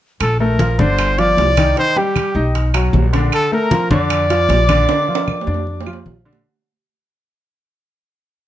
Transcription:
0.20 A#1 A4 A5, high conga, high timbale, claves
0.40 A3 A4 A#4 A#5, high conga
0.59 F3 F4, high conga, high timbale
0.79 G1 D3 D4 C5 C6, high conga
0.99 high conga, high timbale, claves
1.18 F3 F4 D5 D6, high conga, high timbale
1.37 C2, high conga, high timbale, low timbale
1.57 D#3 D#4, high conga, high timbale, claves
1.77 D#3 D#4 C5 C6, high conga, high timbale
1.96 G3 G4 G5, high conga
2.16 high conga, high timbale, claves
2.35 B1 D#4 D#5, high conga
2.55 high conga, high timbale
2.74 F#3 F#4, high conga, high timbale, claves
2.93 A#1, high conga, low timbale
3.13 D3 D4, high conga, high timbale
3.32 A4 A5, high conga, high timbale, claves
3.52 A3 A4 A#4 A#5, high conga
3.71 F3 F4, high conga, high timbale
3.90 F2 D3 D4 D5 D6, high conga
4.10 high conga, high timbale, claves
4.30 F3 F4, high conga, high timbale
4.49 A#1, high conga, high timbale, low timbale
4.69 D3 D4, high conga, high timbale, claves
4.88 D3 D4, high conga, high timbale
5.08 F3 F4, high conga
5.15 high timbale
5.28 high conga, claves
5.41 low timbale
5.47 F2 D4 D5, high conga
5.54 low timbale
5.67 high conga
5.80 low timbale
5.86 F3 F4, high conga, claves
5.93 low timbale
6.05 A#1, high conga, low timbale
6.25 D3 D4, high conga
6.33 low timbale

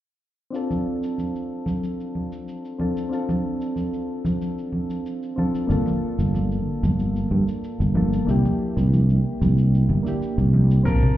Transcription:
0.50 C4 D4 F4
0.54 A4, cabasa
0.71 high conga, cabasa
1.03 cabasa
1.18 high conga, cabasa
1.36 cabasa
1.66 high conga, cabasa
1.83 cabasa
2.00 cabasa
2.15 high conga
2.32 cabasa
2.48 cabasa
2.65 cabasa
2.78 C4 D4 F4 A4, high conga
2.97 cabasa
3.09 C4 D4 F4, cabasa
3.14 A4
3.29 high conga, cabasa
3.61 cabasa
3.76 high conga, cabasa
3.93 cabasa
4.25 high conga, cabasa
4.42 cabasa
4.58 cabasa
4.72 high conga
4.90 cabasa
5.06 cabasa
5.23 cabasa
5.36 C4 D4 F4 A4, high conga
5.55 cabasa
5.67 G1 A#3 D4 F4, cabasa
5.72 A4
5.86 high conga, cabasa
6.19 G1, cabasa
6.34 high conga, cabasa
6.51 cabasa
6.83 G1, high conga, cabasa
6.99 cabasa
7.16 cabasa
7.31 G2, high conga
7.48 cabasa
7.64 cabasa
7.80 G1, cabasa
7.94 A#3 D4 F4 A4, high conga
8.13 cabasa
8.25 C2 A#3 D4 E4, cabasa
8.30 G4
8.45 high conga, cabasa
8.77 C2, cabasa
8.93 high conga, cabasa
9.10 cabasa
9.41 C2, high conga, cabasa
9.58 cabasa
9.74 cabasa
9.89 G1, high conga
10.03 A#3 D4 E4, cabasa
10.08 G4
10.22 cabasa
10.38 C2, cabasa
10.54 high conga
10.71 cabasa
10.83 A#1 C4 D4 F4 A#4, kick, crash, cabasa
10.88 A5
11.03 low conga, cabasa

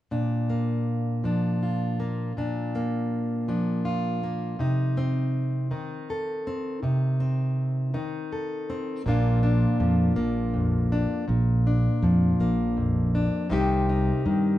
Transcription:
0.11 A#2 D4
0.50 A#3
1.24 F3 D4
1.63 F4
2.00 A#3
2.37 A#2 D4
2.75 A#3
3.48 F3 D4
3.85 F4
4.23 A#3
4.59 C3 D#4
4.97 C4
5.71 D#3 D#4
6.10 A4
6.47 C4
6.83 C3 D#4
7.20 C4
7.94 D#3 D#4
8.32 A4
8.70 C4
9.06 A#1 A#2 F3 A#3 D4 F4
9.43 D4
9.80 F2 F3
10.16 A#1 A#3
10.54 F2
10.92 D4
11.28 A#1 A#2
11.67 D4
12.02 F2 F3
12.40 A#1 A#3
12.77 F2
13.15 D4
13.49 C2 C3 D#3 C4 D#4 G4
13.89 D#4
14.26 G2 D#3

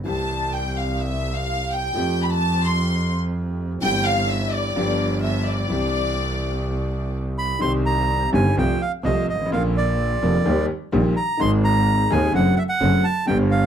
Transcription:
0.04 C2 C3 E3 G3 C4 A5
0.08 G4
0.53 G5
0.78 F5
1.01 E5
1.35 F5
1.72 G5
1.94 F2 F3 A3 C4 G4
2.23 B5
2.31 A5
2.66 C6
3.81 G1 G2 E3 G3 C4 G5
3.85 G4
4.06 F5
4.29 E5
4.53 D5
4.75 G1 G2 F3 B3 D4 G4
5.23 E5
5.47 D5
5.68 C2 C3 E3 C4 D4 G4
7.38 B5
7.59 C2 C3 D#3 G3 C4 C6
7.63 G4
7.86 A#5
8.32 G1 G2 D#3 G3 C4 G4 G#5
8.56 C2 C3 F3 A3 F4 G5
8.82 F5
9.03 C2 C3 F3 A3 F4 D#5
9.28 G#1 D#5
9.34 G1
9.41 G#1
9.46 A1
9.50 A#1 A#2 D3 F3 A#3 F4 F5
9.77 D5
10.22 F1 F2 D3 F3 A#3 F4
10.45 D#2 D#3 G3 A#3 G4
10.92 A#1 A#2 D#3 G3 A#3 G4
11.17 A#5
11.37 G#1 G#2 D#3 G#3 C4 C6
11.42 G#4
11.65 A#5
12.10 D#1 D#2 D#3 G#3 C4 G#4 G#5
12.33 F#1 F#2 D3 F#3 A3 C4 F#4 F#5
12.56 E5 F#5
12.69 F#5
12.80 F#1 F#2 D3 F#3 A3 C4 F#4
13.04 A5
13.25 G1 G2 D3 G3 B3 G5
13.29 G4
13.51 F5

